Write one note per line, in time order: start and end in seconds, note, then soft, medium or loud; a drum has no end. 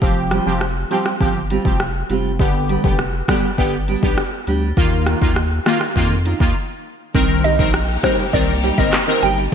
0.01 0.40 F1 loud
0.01 0.43 F3 medium
0.01 0.43 C4 medium
0.01 0.43 G4 loud
0.01 kick loud
0.31 0.52 G3 medium
0.31 0.52 C4 medium
0.31 0.52 F4 medium
0.31 0.52 G4 medium
0.31 cross-stick medium
0.31 closed hi-hat medium
0.46 0.85 F1 loud
0.46 0.65 F3 medium
0.46 0.65 C4 medium
0.46 0.65 G4 medium
0.61 cross-stick medium
0.91 1.09 F3 medium
0.91 1.11 G3 medium
0.91 1.10 C4 medium
0.91 1.11 C4 medium
0.91 1.11 F4 loud
0.91 1.10 G4 medium
0.91 1.12 G4 medium
0.91 closed hi-hat medium
1.06 cross-stick medium
1.20 1.59 G1 medium
1.20 1.39 F3 medium
1.20 1.39 C4 medium
1.20 1.40 G4 loud
1.20 kick medium
1.50 1.70 G3 medium
1.50 1.65 C4 medium
1.50 1.64 F4 loud
1.50 1.64 G4 medium
1.50 closed hi-hat medium
1.65 2.04 F1 medium
1.65 1.84 F3 medium
1.65 1.84 C4 medium
1.65 1.84 G4 medium
1.65 muted nylon-string guitar stroke soft
1.65 kick loud
1.80 cross-stick medium
2.09 2.41 F1 medium
2.09 2.30 G3 medium
2.09 2.30 C4 medium
2.09 2.30 F4 medium
2.09 2.30 G4 loud
2.09 closed hi-hat medium
2.39 2.78 G1 medium
2.39 2.80 D3 medium
2.39 2.80 B3 medium
2.39 2.81 G4 loud
2.39 kick loud
2.69 2.89 G3 medium
2.69 2.90 B3 medium
2.69 2.90 D4 medium
2.69 2.90 G4 medium
2.69 closed hi-hat medium
2.84 3.23 F1 loud
2.84 3.03 D3 medium
2.84 3.03 B3 medium
2.84 3.03 G4 medium
2.84 kick loud
2.99 cross-stick medium
3.28 3.47 D3 medium
3.28 3.49 G3 medium
3.28 3.47 B3 medium
3.28 3.49 B3 loud
3.28 3.49 D4 medium
3.28 3.47 G4 medium
3.28 3.49 G4 loud
3.28 kick medium
3.28 cross-stick loud
3.28 closed hi-hat medium
3.58 3.97 G1 loud
3.58 3.77 D3 medium
3.58 3.77 B3 medium
3.58 3.77 G4 loud
3.58 kick medium
3.88 4.08 G3 medium
3.88 4.02 B3 medium
3.88 4.02 D4 medium
3.88 4.01 G4 loud
3.88 closed hi-hat medium
4.03 4.16 B1 medium
4.03 4.21 D3 medium
4.03 4.22 B3 medium
4.03 4.22 G4 medium
4.03 muted nylon-string guitar stroke soft
4.03 kick loud
4.18 cross-stick medium
4.47 4.73 D2 medium
4.47 4.67 G3 medium
4.47 4.68 B3 medium
4.47 4.68 D4 medium
4.47 4.68 G4 medium
4.47 closed hi-hat medium
4.77 5.16 D#2 loud
4.77 5.18 D#3 medium
4.77 5.18 A#3 medium
4.77 5.18 F4 loud
4.77 kick loud
5.06 5.27 D#3 medium
5.06 5.27 A#3 medium
5.06 5.27 D#4 medium
5.06 5.27 F4 medium
5.06 cross-stick medium
5.06 closed hi-hat medium
5.21 5.60 D#2 medium
5.21 5.40 D#3 medium
5.21 5.40 A#3 medium
5.21 5.41 F4 medium
5.21 kick medium
5.36 cross-stick medium
5.66 5.86 D#3 medium
5.66 5.85 D#3 medium
5.66 5.86 A#3 medium
5.66 5.85 A#3 medium
5.66 5.87 D#4 medium
5.66 5.85 F4 medium
5.66 5.87 F4 medium
5.66 cross-stick loud
5.66 closed hi-hat medium
5.81 cross-stick medium
5.96 6.34 F2 loud
5.96 6.14 D#3 medium
5.96 6.15 A#3 medium
5.96 6.15 F4 loud
5.96 kick medium
6.25 6.46 D#3 medium
6.25 6.40 A#3 medium
6.25 6.39 D#4 loud
6.25 6.39 F4 loud
6.25 closed hi-hat medium
6.40 6.53 D#2 medium
6.40 6.55 D#3 medium
6.40 6.55 A#3 medium
6.40 6.55 F4 medium
6.40 muted nylon-string guitar stroke soft
6.40 kick loud
7.14 7.61 C2 loud
7.14 9.54 C3 medium
7.14 7.55 D#3 loud
7.14 9.50 A#3 medium
7.14 7.56 C4 medium
7.14 9.50 D#4 medium
7.14 9.50 G4 medium
7.14 7.56 A#4 loud
7.14 kick loud
7.14 shaker medium
7.29 shaker medium
7.29 shaker soft
7.44 7.64 G3 medium
7.44 7.65 A#3 medium
7.44 7.65 D#4 medium
7.44 7.65 G4 medium
7.44 7.57 D#5 medium
7.44 closed hi-hat medium
7.44 shaker medium
7.59 7.98 A#1 loud
7.59 7.78 D#3 medium
7.59 7.78 C4 medium
7.59 7.78 A#4 medium
7.59 kick loud
7.59 shaker medium
7.74 cross-stick loud
7.74 shaker medium
7.89 shaker medium
8.03 8.22 D#3 medium
8.03 8.24 G3 medium
8.03 8.24 A#3 medium
8.03 8.23 C4 medium
8.03 8.24 D#4 medium
8.03 8.24 G4 loud
8.03 8.23 A#4 medium
8.03 8.17 C5 medium
8.03 kick medium
8.03 cross-stick loud
8.03 closed hi-hat medium
8.03 shaker medium
8.18 shaker medium
8.33 8.72 C2 medium
8.33 8.52 D#3 medium
8.33 8.52 C4 medium
8.33 8.52 A#4 loud
8.33 8.46 D5 medium
8.33 kick loud
8.33 shaker medium
8.48 shaker medium
8.48 shaker soft
8.63 8.83 G3 medium
8.63 8.77 A#3 loud
8.63 8.77 D#4 loud
8.63 8.77 G4 loud
8.63 closed hi-hat medium
8.63 shaker medium
8.78 8.91 G1 medium
8.78 8.97 D#3 medium
8.78 8.97 C4 medium
8.78 8.97 A#4 medium
8.78 8.91 D#5 medium
8.78 muted nylon-string guitar stroke medium
8.78 kick loud
8.78 shaker medium
8.93 cross-stick loud
8.93 clap medium
8.93 shaker medium
9.07 9.26 D#3 medium
9.07 9.27 C4 medium
9.07 9.27 A#4 medium
9.07 shaker medium
9.22 9.48 G1 medium
9.22 9.43 G3 medium
9.22 9.43 A#3 medium
9.22 9.43 D#4 medium
9.22 9.43 G4 loud
9.22 9.35 G5 medium
9.22 closed hi-hat medium
9.22 shaker soft
9.22 shaker medium
9.37 shaker medium